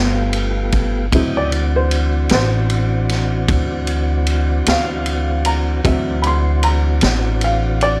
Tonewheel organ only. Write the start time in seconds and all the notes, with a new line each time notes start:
Already playing: A3 B3 F4 G4
1.12 C#3 E4 D#5 G5
1.51 E3 C4 D4 F#4
5.83 E3 C4 D4 F#4